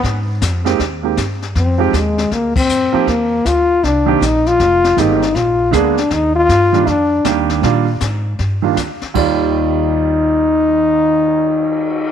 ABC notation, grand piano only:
X:1
M:4/4
L:1/8
Q:"Swing" 1/4=158
K:Eb
V:1 name="Grand piano"
z3 [A,B,CEG] z [A,B,CEG] z2 | z [F,A,CEG] z4 z [F,B,CEG] | z4 z [E,B,CDG] z2 | z2 [E,A,B,CG] z3 [D,A,B,_CA] z |
z3 [E,G,B,DF] z2 [E,G,B,DG]2 | [E,G,B,DF] z4 [E,G,B,DF] z2 | [E,,E,G,Fd]8- | [E,,E,G,Fd]8 |]